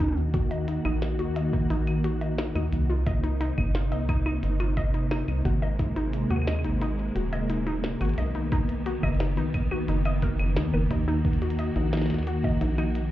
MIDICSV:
0, 0, Header, 1, 5, 480
1, 0, Start_track
1, 0, Time_signature, 4, 2, 24, 8
1, 0, Key_signature, -6, "minor"
1, 0, Tempo, 681818
1, 9234, End_track
2, 0, Start_track
2, 0, Title_t, "Synth arpeggio sound"
2, 0, Program_c, 0, 84
2, 0, Note_on_c, 0, 63, 101
2, 112, Note_off_c, 0, 63, 0
2, 239, Note_on_c, 0, 66, 74
2, 289, Note_off_c, 0, 66, 0
2, 359, Note_on_c, 0, 75, 72
2, 473, Note_off_c, 0, 75, 0
2, 479, Note_on_c, 0, 63, 84
2, 562, Note_off_c, 0, 63, 0
2, 599, Note_on_c, 0, 63, 105
2, 713, Note_off_c, 0, 63, 0
2, 838, Note_on_c, 0, 66, 82
2, 888, Note_off_c, 0, 66, 0
2, 958, Note_on_c, 0, 75, 83
2, 1072, Note_off_c, 0, 75, 0
2, 1078, Note_on_c, 0, 63, 77
2, 1162, Note_off_c, 0, 63, 0
2, 1199, Note_on_c, 0, 63, 101
2, 1313, Note_off_c, 0, 63, 0
2, 1438, Note_on_c, 0, 66, 82
2, 1488, Note_off_c, 0, 66, 0
2, 1558, Note_on_c, 0, 75, 76
2, 1672, Note_off_c, 0, 75, 0
2, 1679, Note_on_c, 0, 63, 76
2, 1762, Note_off_c, 0, 63, 0
2, 1798, Note_on_c, 0, 63, 98
2, 1912, Note_off_c, 0, 63, 0
2, 2038, Note_on_c, 0, 65, 79
2, 2088, Note_off_c, 0, 65, 0
2, 2158, Note_on_c, 0, 75, 78
2, 2272, Note_off_c, 0, 75, 0
2, 2278, Note_on_c, 0, 63, 74
2, 2362, Note_off_c, 0, 63, 0
2, 2398, Note_on_c, 0, 63, 103
2, 2512, Note_off_c, 0, 63, 0
2, 2638, Note_on_c, 0, 65, 74
2, 2689, Note_off_c, 0, 65, 0
2, 2758, Note_on_c, 0, 75, 78
2, 2872, Note_off_c, 0, 75, 0
2, 2878, Note_on_c, 0, 63, 80
2, 2962, Note_off_c, 0, 63, 0
2, 2998, Note_on_c, 0, 63, 102
2, 3112, Note_off_c, 0, 63, 0
2, 3238, Note_on_c, 0, 65, 77
2, 3288, Note_off_c, 0, 65, 0
2, 3358, Note_on_c, 0, 75, 80
2, 3472, Note_off_c, 0, 75, 0
2, 3478, Note_on_c, 0, 63, 74
2, 3562, Note_off_c, 0, 63, 0
2, 3598, Note_on_c, 0, 63, 106
2, 3712, Note_off_c, 0, 63, 0
2, 3838, Note_on_c, 0, 66, 79
2, 3888, Note_off_c, 0, 66, 0
2, 3958, Note_on_c, 0, 75, 80
2, 4072, Note_off_c, 0, 75, 0
2, 4079, Note_on_c, 0, 63, 77
2, 4162, Note_off_c, 0, 63, 0
2, 4198, Note_on_c, 0, 63, 105
2, 4312, Note_off_c, 0, 63, 0
2, 4438, Note_on_c, 0, 66, 79
2, 4488, Note_off_c, 0, 66, 0
2, 4558, Note_on_c, 0, 75, 74
2, 4672, Note_off_c, 0, 75, 0
2, 4678, Note_on_c, 0, 63, 76
2, 4762, Note_off_c, 0, 63, 0
2, 4798, Note_on_c, 0, 63, 97
2, 4912, Note_off_c, 0, 63, 0
2, 5038, Note_on_c, 0, 66, 79
2, 5088, Note_off_c, 0, 66, 0
2, 5157, Note_on_c, 0, 75, 76
2, 5272, Note_off_c, 0, 75, 0
2, 5277, Note_on_c, 0, 63, 81
2, 5361, Note_off_c, 0, 63, 0
2, 5397, Note_on_c, 0, 63, 103
2, 5512, Note_off_c, 0, 63, 0
2, 5638, Note_on_c, 0, 66, 73
2, 5688, Note_off_c, 0, 66, 0
2, 5758, Note_on_c, 0, 75, 80
2, 5872, Note_off_c, 0, 75, 0
2, 5878, Note_on_c, 0, 63, 74
2, 5962, Note_off_c, 0, 63, 0
2, 5998, Note_on_c, 0, 63, 101
2, 6112, Note_off_c, 0, 63, 0
2, 6238, Note_on_c, 0, 66, 84
2, 6288, Note_off_c, 0, 66, 0
2, 6359, Note_on_c, 0, 75, 78
2, 6473, Note_off_c, 0, 75, 0
2, 6479, Note_on_c, 0, 63, 76
2, 6562, Note_off_c, 0, 63, 0
2, 6599, Note_on_c, 0, 63, 102
2, 6713, Note_off_c, 0, 63, 0
2, 6839, Note_on_c, 0, 66, 77
2, 6889, Note_off_c, 0, 66, 0
2, 6959, Note_on_c, 0, 63, 79
2, 7073, Note_off_c, 0, 63, 0
2, 7079, Note_on_c, 0, 75, 98
2, 7193, Note_off_c, 0, 75, 0
2, 7199, Note_on_c, 0, 70, 81
2, 7249, Note_off_c, 0, 70, 0
2, 7440, Note_on_c, 0, 63, 82
2, 7553, Note_off_c, 0, 63, 0
2, 7559, Note_on_c, 0, 70, 73
2, 7673, Note_off_c, 0, 70, 0
2, 7679, Note_on_c, 0, 63, 82
2, 7729, Note_off_c, 0, 63, 0
2, 7799, Note_on_c, 0, 63, 102
2, 7913, Note_off_c, 0, 63, 0
2, 8039, Note_on_c, 0, 66, 74
2, 8089, Note_off_c, 0, 66, 0
2, 8159, Note_on_c, 0, 75, 82
2, 8273, Note_off_c, 0, 75, 0
2, 8279, Note_on_c, 0, 63, 78
2, 8329, Note_off_c, 0, 63, 0
2, 8399, Note_on_c, 0, 63, 96
2, 8512, Note_off_c, 0, 63, 0
2, 8639, Note_on_c, 0, 66, 78
2, 8689, Note_off_c, 0, 66, 0
2, 8759, Note_on_c, 0, 75, 77
2, 8873, Note_off_c, 0, 75, 0
2, 8879, Note_on_c, 0, 63, 76
2, 8929, Note_off_c, 0, 63, 0
2, 8999, Note_on_c, 0, 63, 102
2, 9113, Note_off_c, 0, 63, 0
2, 9234, End_track
3, 0, Start_track
3, 0, Title_t, "String machine"
3, 0, Program_c, 1, 50
3, 0, Note_on_c, 1, 51, 86
3, 0, Note_on_c, 1, 58, 75
3, 0, Note_on_c, 1, 66, 90
3, 1899, Note_off_c, 1, 51, 0
3, 1899, Note_off_c, 1, 58, 0
3, 1900, Note_off_c, 1, 66, 0
3, 1918, Note_on_c, 1, 48, 80
3, 1918, Note_on_c, 1, 58, 76
3, 1918, Note_on_c, 1, 63, 94
3, 3819, Note_off_c, 1, 63, 0
3, 3838, Note_on_c, 1, 56, 77
3, 5730, Note_off_c, 1, 48, 0
3, 5739, Note_off_c, 1, 56, 0
3, 5757, Note_on_c, 1, 51, 80
3, 5757, Note_on_c, 1, 59, 89
3, 7659, Note_off_c, 1, 59, 0
3, 7679, Note_on_c, 1, 66, 90
3, 9234, Note_off_c, 1, 51, 0
3, 9234, Note_off_c, 1, 58, 0
3, 9234, Note_off_c, 1, 66, 0
3, 9234, End_track
4, 0, Start_track
4, 0, Title_t, "Acid bass"
4, 0, Program_c, 2, 38
4, 0, Note_on_c, 2, 39, 98
4, 568, Note_off_c, 2, 39, 0
4, 599, Note_on_c, 2, 34, 103
4, 839, Note_on_c, 2, 39, 82
4, 850, Note_off_c, 2, 34, 0
4, 1168, Note_off_c, 2, 39, 0
4, 1198, Note_on_c, 2, 34, 83
4, 1768, Note_off_c, 2, 34, 0
4, 1798, Note_on_c, 2, 39, 88
4, 1899, Note_off_c, 2, 39, 0
4, 1918, Note_on_c, 2, 36, 101
4, 2488, Note_off_c, 2, 36, 0
4, 2518, Note_on_c, 2, 31, 102
4, 2758, Note_on_c, 2, 36, 84
4, 2769, Note_off_c, 2, 31, 0
4, 3088, Note_off_c, 2, 36, 0
4, 3118, Note_on_c, 2, 31, 84
4, 3688, Note_off_c, 2, 31, 0
4, 3719, Note_on_c, 2, 36, 89
4, 3819, Note_off_c, 2, 36, 0
4, 3839, Note_on_c, 2, 32, 100
4, 4408, Note_off_c, 2, 32, 0
4, 4438, Note_on_c, 2, 39, 108
4, 4678, Note_on_c, 2, 32, 84
4, 4689, Note_off_c, 2, 39, 0
4, 5008, Note_off_c, 2, 32, 0
4, 5038, Note_on_c, 2, 27, 79
4, 5608, Note_off_c, 2, 27, 0
4, 5638, Note_on_c, 2, 32, 92
4, 5739, Note_off_c, 2, 32, 0
4, 5758, Note_on_c, 2, 35, 104
4, 6328, Note_off_c, 2, 35, 0
4, 6358, Note_on_c, 2, 30, 105
4, 6599, Note_on_c, 2, 35, 88
4, 6609, Note_off_c, 2, 30, 0
4, 6928, Note_off_c, 2, 35, 0
4, 6959, Note_on_c, 2, 30, 83
4, 7314, Note_off_c, 2, 30, 0
4, 7319, Note_on_c, 2, 30, 102
4, 7439, Note_on_c, 2, 39, 101
4, 7450, Note_off_c, 2, 30, 0
4, 7540, Note_off_c, 2, 39, 0
4, 7559, Note_on_c, 2, 30, 88
4, 7660, Note_off_c, 2, 30, 0
4, 7678, Note_on_c, 2, 39, 105
4, 8248, Note_off_c, 2, 39, 0
4, 8279, Note_on_c, 2, 34, 105
4, 8519, Note_on_c, 2, 39, 86
4, 8530, Note_off_c, 2, 34, 0
4, 8848, Note_off_c, 2, 39, 0
4, 8880, Note_on_c, 2, 34, 80
4, 9234, Note_off_c, 2, 34, 0
4, 9234, End_track
5, 0, Start_track
5, 0, Title_t, "Drums"
5, 0, Note_on_c, 9, 36, 86
5, 0, Note_on_c, 9, 42, 82
5, 28, Note_on_c, 9, 47, 56
5, 58, Note_off_c, 9, 47, 0
5, 58, Note_on_c, 9, 47, 60
5, 68, Note_off_c, 9, 42, 0
5, 69, Note_off_c, 9, 36, 0
5, 88, Note_off_c, 9, 47, 0
5, 88, Note_on_c, 9, 47, 65
5, 158, Note_off_c, 9, 47, 0
5, 238, Note_on_c, 9, 42, 79
5, 239, Note_on_c, 9, 36, 115
5, 309, Note_off_c, 9, 36, 0
5, 309, Note_off_c, 9, 42, 0
5, 359, Note_on_c, 9, 42, 51
5, 429, Note_off_c, 9, 42, 0
5, 479, Note_on_c, 9, 42, 82
5, 549, Note_off_c, 9, 42, 0
5, 599, Note_on_c, 9, 42, 37
5, 599, Note_on_c, 9, 75, 75
5, 669, Note_off_c, 9, 42, 0
5, 669, Note_off_c, 9, 75, 0
5, 719, Note_on_c, 9, 38, 115
5, 719, Note_on_c, 9, 42, 79
5, 789, Note_off_c, 9, 38, 0
5, 789, Note_off_c, 9, 42, 0
5, 839, Note_on_c, 9, 42, 55
5, 909, Note_off_c, 9, 42, 0
5, 959, Note_on_c, 9, 42, 81
5, 1029, Note_off_c, 9, 42, 0
5, 1079, Note_on_c, 9, 36, 110
5, 1149, Note_off_c, 9, 36, 0
5, 1199, Note_on_c, 9, 42, 77
5, 1269, Note_off_c, 9, 42, 0
5, 1319, Note_on_c, 9, 42, 56
5, 1319, Note_on_c, 9, 75, 53
5, 1389, Note_off_c, 9, 42, 0
5, 1389, Note_off_c, 9, 75, 0
5, 1439, Note_on_c, 9, 42, 86
5, 1509, Note_off_c, 9, 42, 0
5, 1559, Note_on_c, 9, 42, 37
5, 1629, Note_off_c, 9, 42, 0
5, 1678, Note_on_c, 9, 38, 119
5, 1678, Note_on_c, 9, 42, 80
5, 1749, Note_off_c, 9, 38, 0
5, 1749, Note_off_c, 9, 42, 0
5, 1799, Note_on_c, 9, 42, 53
5, 1799, Note_on_c, 9, 75, 56
5, 1869, Note_off_c, 9, 42, 0
5, 1869, Note_off_c, 9, 75, 0
5, 1919, Note_on_c, 9, 42, 81
5, 1989, Note_off_c, 9, 42, 0
5, 2158, Note_on_c, 9, 42, 79
5, 2159, Note_on_c, 9, 36, 120
5, 2229, Note_off_c, 9, 36, 0
5, 2229, Note_off_c, 9, 42, 0
5, 2279, Note_on_c, 9, 42, 52
5, 2349, Note_off_c, 9, 42, 0
5, 2399, Note_on_c, 9, 42, 84
5, 2469, Note_off_c, 9, 42, 0
5, 2519, Note_on_c, 9, 36, 84
5, 2519, Note_on_c, 9, 42, 38
5, 2519, Note_on_c, 9, 75, 74
5, 2589, Note_off_c, 9, 36, 0
5, 2590, Note_off_c, 9, 42, 0
5, 2590, Note_off_c, 9, 75, 0
5, 2639, Note_on_c, 9, 38, 123
5, 2639, Note_on_c, 9, 42, 82
5, 2709, Note_off_c, 9, 38, 0
5, 2709, Note_off_c, 9, 42, 0
5, 2759, Note_on_c, 9, 42, 54
5, 2829, Note_off_c, 9, 42, 0
5, 2879, Note_on_c, 9, 36, 118
5, 2879, Note_on_c, 9, 42, 85
5, 2879, Note_on_c, 9, 75, 78
5, 2949, Note_off_c, 9, 36, 0
5, 2949, Note_off_c, 9, 42, 0
5, 2949, Note_off_c, 9, 75, 0
5, 2999, Note_on_c, 9, 75, 81
5, 3069, Note_off_c, 9, 75, 0
5, 3119, Note_on_c, 9, 42, 81
5, 3190, Note_off_c, 9, 42, 0
5, 3239, Note_on_c, 9, 42, 56
5, 3239, Note_on_c, 9, 75, 55
5, 3309, Note_off_c, 9, 42, 0
5, 3309, Note_off_c, 9, 75, 0
5, 3358, Note_on_c, 9, 42, 81
5, 3359, Note_on_c, 9, 36, 81
5, 3429, Note_off_c, 9, 36, 0
5, 3429, Note_off_c, 9, 42, 0
5, 3479, Note_on_c, 9, 42, 37
5, 3549, Note_off_c, 9, 42, 0
5, 3599, Note_on_c, 9, 38, 127
5, 3599, Note_on_c, 9, 75, 76
5, 3669, Note_off_c, 9, 38, 0
5, 3669, Note_off_c, 9, 75, 0
5, 3719, Note_on_c, 9, 42, 53
5, 3719, Note_on_c, 9, 75, 52
5, 3789, Note_off_c, 9, 42, 0
5, 3789, Note_off_c, 9, 75, 0
5, 3839, Note_on_c, 9, 36, 86
5, 3839, Note_on_c, 9, 42, 81
5, 3909, Note_off_c, 9, 36, 0
5, 3909, Note_off_c, 9, 42, 0
5, 4079, Note_on_c, 9, 36, 121
5, 4079, Note_on_c, 9, 42, 77
5, 4149, Note_off_c, 9, 36, 0
5, 4149, Note_off_c, 9, 42, 0
5, 4199, Note_on_c, 9, 42, 54
5, 4269, Note_off_c, 9, 42, 0
5, 4318, Note_on_c, 9, 42, 84
5, 4389, Note_off_c, 9, 42, 0
5, 4439, Note_on_c, 9, 42, 36
5, 4439, Note_on_c, 9, 75, 33
5, 4478, Note_off_c, 9, 75, 0
5, 4478, Note_on_c, 9, 75, 40
5, 4509, Note_off_c, 9, 42, 0
5, 4518, Note_off_c, 9, 75, 0
5, 4518, Note_on_c, 9, 75, 46
5, 4558, Note_off_c, 9, 75, 0
5, 4558, Note_on_c, 9, 38, 124
5, 4558, Note_on_c, 9, 42, 80
5, 4558, Note_on_c, 9, 75, 53
5, 4598, Note_off_c, 9, 75, 0
5, 4598, Note_on_c, 9, 75, 60
5, 4628, Note_off_c, 9, 38, 0
5, 4628, Note_off_c, 9, 42, 0
5, 4638, Note_off_c, 9, 75, 0
5, 4638, Note_on_c, 9, 75, 65
5, 4678, Note_on_c, 9, 42, 56
5, 4709, Note_off_c, 9, 75, 0
5, 4748, Note_off_c, 9, 42, 0
5, 4798, Note_on_c, 9, 42, 80
5, 4869, Note_off_c, 9, 42, 0
5, 5038, Note_on_c, 9, 42, 78
5, 5109, Note_off_c, 9, 42, 0
5, 5158, Note_on_c, 9, 42, 54
5, 5158, Note_on_c, 9, 75, 52
5, 5229, Note_off_c, 9, 42, 0
5, 5229, Note_off_c, 9, 75, 0
5, 5278, Note_on_c, 9, 42, 82
5, 5348, Note_off_c, 9, 42, 0
5, 5398, Note_on_c, 9, 42, 36
5, 5468, Note_off_c, 9, 42, 0
5, 5518, Note_on_c, 9, 38, 127
5, 5588, Note_off_c, 9, 38, 0
5, 5638, Note_on_c, 9, 42, 76
5, 5638, Note_on_c, 9, 75, 51
5, 5668, Note_off_c, 9, 42, 0
5, 5668, Note_on_c, 9, 42, 42
5, 5698, Note_off_c, 9, 42, 0
5, 5698, Note_on_c, 9, 42, 34
5, 5708, Note_off_c, 9, 75, 0
5, 5728, Note_off_c, 9, 42, 0
5, 5728, Note_on_c, 9, 42, 28
5, 5758, Note_off_c, 9, 42, 0
5, 5758, Note_on_c, 9, 42, 75
5, 5817, Note_off_c, 9, 42, 0
5, 5817, Note_on_c, 9, 42, 16
5, 5848, Note_off_c, 9, 42, 0
5, 5848, Note_on_c, 9, 42, 13
5, 5878, Note_off_c, 9, 42, 0
5, 5878, Note_on_c, 9, 42, 36
5, 5948, Note_off_c, 9, 42, 0
5, 5998, Note_on_c, 9, 36, 124
5, 5998, Note_on_c, 9, 42, 76
5, 6068, Note_off_c, 9, 42, 0
5, 6069, Note_off_c, 9, 36, 0
5, 6118, Note_on_c, 9, 42, 47
5, 6188, Note_off_c, 9, 42, 0
5, 6238, Note_on_c, 9, 42, 75
5, 6308, Note_off_c, 9, 42, 0
5, 6358, Note_on_c, 9, 36, 82
5, 6358, Note_on_c, 9, 42, 16
5, 6358, Note_on_c, 9, 75, 72
5, 6398, Note_off_c, 9, 42, 0
5, 6398, Note_on_c, 9, 42, 18
5, 6429, Note_off_c, 9, 36, 0
5, 6429, Note_off_c, 9, 75, 0
5, 6438, Note_off_c, 9, 42, 0
5, 6438, Note_on_c, 9, 42, 21
5, 6478, Note_off_c, 9, 42, 0
5, 6478, Note_on_c, 9, 38, 116
5, 6478, Note_on_c, 9, 42, 76
5, 6518, Note_off_c, 9, 42, 0
5, 6518, Note_on_c, 9, 42, 28
5, 6549, Note_off_c, 9, 38, 0
5, 6558, Note_off_c, 9, 42, 0
5, 6558, Note_on_c, 9, 42, 31
5, 6598, Note_off_c, 9, 42, 0
5, 6598, Note_on_c, 9, 42, 50
5, 6668, Note_off_c, 9, 42, 0
5, 6718, Note_on_c, 9, 36, 114
5, 6718, Note_on_c, 9, 42, 77
5, 6718, Note_on_c, 9, 75, 73
5, 6788, Note_off_c, 9, 36, 0
5, 6788, Note_off_c, 9, 42, 0
5, 6788, Note_off_c, 9, 75, 0
5, 6837, Note_on_c, 9, 75, 73
5, 6908, Note_off_c, 9, 75, 0
5, 6958, Note_on_c, 9, 42, 78
5, 7028, Note_off_c, 9, 42, 0
5, 7077, Note_on_c, 9, 42, 53
5, 7077, Note_on_c, 9, 75, 52
5, 7148, Note_off_c, 9, 42, 0
5, 7148, Note_off_c, 9, 75, 0
5, 7198, Note_on_c, 9, 36, 78
5, 7198, Note_on_c, 9, 42, 76
5, 7268, Note_off_c, 9, 42, 0
5, 7269, Note_off_c, 9, 36, 0
5, 7318, Note_on_c, 9, 42, 36
5, 7318, Note_on_c, 9, 75, 75
5, 7388, Note_off_c, 9, 42, 0
5, 7388, Note_off_c, 9, 75, 0
5, 7438, Note_on_c, 9, 38, 123
5, 7438, Note_on_c, 9, 42, 75
5, 7508, Note_off_c, 9, 38, 0
5, 7508, Note_off_c, 9, 42, 0
5, 7558, Note_on_c, 9, 75, 48
5, 7629, Note_off_c, 9, 75, 0
5, 7678, Note_on_c, 9, 36, 82
5, 7678, Note_on_c, 9, 42, 76
5, 7749, Note_off_c, 9, 36, 0
5, 7749, Note_off_c, 9, 42, 0
5, 7918, Note_on_c, 9, 36, 113
5, 7919, Note_on_c, 9, 42, 34
5, 7979, Note_off_c, 9, 42, 0
5, 7979, Note_on_c, 9, 42, 41
5, 7989, Note_off_c, 9, 36, 0
5, 8039, Note_off_c, 9, 42, 0
5, 8039, Note_on_c, 9, 42, 52
5, 8098, Note_off_c, 9, 42, 0
5, 8098, Note_on_c, 9, 42, 58
5, 8158, Note_off_c, 9, 42, 0
5, 8158, Note_on_c, 9, 42, 78
5, 8229, Note_off_c, 9, 42, 0
5, 8278, Note_on_c, 9, 42, 35
5, 8349, Note_off_c, 9, 42, 0
5, 8398, Note_on_c, 9, 38, 115
5, 8398, Note_on_c, 9, 42, 78
5, 8428, Note_off_c, 9, 38, 0
5, 8428, Note_on_c, 9, 38, 90
5, 8459, Note_off_c, 9, 38, 0
5, 8459, Note_on_c, 9, 38, 76
5, 8469, Note_off_c, 9, 42, 0
5, 8488, Note_off_c, 9, 38, 0
5, 8488, Note_on_c, 9, 38, 64
5, 8518, Note_off_c, 9, 38, 0
5, 8518, Note_on_c, 9, 38, 51
5, 8518, Note_on_c, 9, 42, 51
5, 8548, Note_off_c, 9, 38, 0
5, 8548, Note_on_c, 9, 38, 42
5, 8578, Note_off_c, 9, 38, 0
5, 8578, Note_on_c, 9, 38, 33
5, 8589, Note_off_c, 9, 42, 0
5, 8608, Note_off_c, 9, 38, 0
5, 8608, Note_on_c, 9, 38, 28
5, 8638, Note_on_c, 9, 42, 76
5, 8679, Note_off_c, 9, 38, 0
5, 8709, Note_off_c, 9, 42, 0
5, 8758, Note_on_c, 9, 36, 108
5, 8829, Note_off_c, 9, 36, 0
5, 8879, Note_on_c, 9, 42, 75
5, 8949, Note_off_c, 9, 42, 0
5, 8999, Note_on_c, 9, 42, 53
5, 8999, Note_on_c, 9, 75, 54
5, 9069, Note_off_c, 9, 42, 0
5, 9069, Note_off_c, 9, 75, 0
5, 9119, Note_on_c, 9, 42, 80
5, 9189, Note_off_c, 9, 42, 0
5, 9234, End_track
0, 0, End_of_file